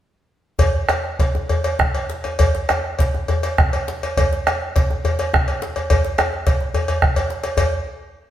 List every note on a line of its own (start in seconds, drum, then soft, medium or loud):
0.59 bombo low medium
0.59 cowbell medium
0.59 djembe bass medium
0.89 bombo rim medium
0.89 cowbell soft
0.89 djembe tone medium
1.04 bombo rim soft
1.19 bombo low medium
1.19 cowbell soft
1.19 djembe slap medium
1.35 bombo rim soft
1.35 djembe tone medium
1.49 bombo rim soft
1.49 cowbell soft
1.49 djembe bass medium
1.64 cowbell soft
1.64 djembe slap medium
1.79 bombo rim medium
1.79 bombo low medium
1.79 djembe tone medium
1.95 cowbell soft
2.10 djembe slap medium
2.24 cowbell soft
2.24 djembe tone medium
2.39 bombo low medium
2.39 cowbell medium
2.39 djembe bass medium
2.55 djembe slap medium
2.69 bombo rim medium
2.69 cowbell soft
2.69 djembe tone medium
2.84 bombo rim soft
2.99 bombo low medium
2.99 cowbell soft
2.99 djembe slap medium
3.14 bombo rim soft
3.14 djembe tone soft
3.28 bombo rim soft
3.28 cowbell soft
3.28 djembe bass medium
3.43 cowbell soft
3.43 djembe slap medium
3.58 bombo rim medium
3.58 bombo low loud
3.58 djembe tone medium
3.73 cowbell soft
3.88 bombo rim soft
3.88 djembe slap medium
4.03 cowbell soft
4.03 djembe tone medium
4.17 bombo low medium
4.17 cowbell medium
4.17 djembe bass medium
4.33 djembe slap soft
4.47 bombo rim medium
4.47 cowbell soft
4.47 djembe tone medium
4.62 bombo rim soft
4.76 bombo low medium
4.76 cowbell soft
4.76 djembe slap medium
4.90 bombo rim soft
4.90 djembe tone soft
5.05 bombo rim soft
5.05 cowbell soft
5.05 djembe bass medium
5.19 cowbell soft
5.19 djembe slap medium
5.34 bombo rim loud
5.34 bombo low loud
5.34 djembe tone medium
5.48 cowbell soft
5.62 bombo rim soft
5.62 djembe slap medium
5.76 cowbell soft
5.76 djembe tone medium
5.90 bombo low medium
5.90 cowbell medium
5.90 djembe bass medium
6.05 djembe slap medium
6.18 bombo rim medium
6.18 cowbell soft
6.18 djembe tone medium
6.33 bombo rim soft
6.33 djembe slap soft
6.47 bombo low medium
6.47 cowbell soft
6.47 djembe slap medium
6.60 djembe tone medium
6.74 bombo rim soft
6.74 cowbell soft
6.74 djembe bass medium
6.88 bombo rim soft
6.88 cowbell soft
6.88 djembe bass soft
7.02 bombo rim medium
7.02 bombo low medium
7.02 djembe bass soft
7.16 bombo rim soft
7.16 cowbell soft
7.16 djembe bass soft
7.30 djembe slap medium
7.43 bombo rim soft
7.43 cowbell soft
7.43 djembe slap medium
7.57 bombo low medium
7.57 cowbell medium
7.57 djembe bass medium